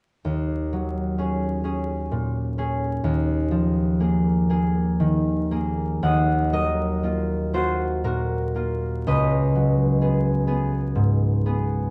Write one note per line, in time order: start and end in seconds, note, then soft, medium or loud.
0.25 3.03 D#2 soft
0.73 3.08 F#3 soft
1.18 1.63 C#4 soft
1.18 1.63 G#4 soft
1.64 2.57 C#4 soft
1.64 2.57 G#4 soft
2.11 3.08 A#2 soft
2.58 3.08 C#4 soft
2.58 3.99 G#4 soft
3.04 6.01 D#2 soft
3.51 7.41 F3 soft
4.00 4.49 A#3 soft
4.00 4.49 G#4 soft
4.50 5.50 A#3 soft
4.50 5.51 G#4 soft
5.00 6.07 D#3 soft
5.51 7.02 A#3 soft
5.51 6.07 G#4 soft
6.03 9.11 D#2 soft
6.03 6.52 D#5 soft
6.03 9.93 F#5 medium
6.52 9.54 F#3 soft
6.52 8.03 A#4 soft
6.52 9.06 D#5 medium
7.03 7.52 A#3 soft
7.03 7.53 F4 soft
7.53 8.54 A#3 soft
7.53 8.55 F4 soft
7.53 8.04 F#4 soft
7.53 8.40 C5 medium
8.04 9.11 A#2 soft
8.04 11.90 F#4 soft
8.04 9.11 A#4 medium
8.55 9.11 A#3 soft
8.55 9.11 F4 soft
9.07 11.90 C#2 soft
9.07 11.90 B4 soft
9.07 11.90 D#5 medium
9.55 11.90 F#3 soft
10.01 10.46 B3 soft
10.01 10.46 G#4 soft
10.47 11.45 B3 soft
10.47 11.45 G#4 soft
10.95 11.90 G#2 soft
11.46 11.90 B3 soft
11.46 11.90 G#4 soft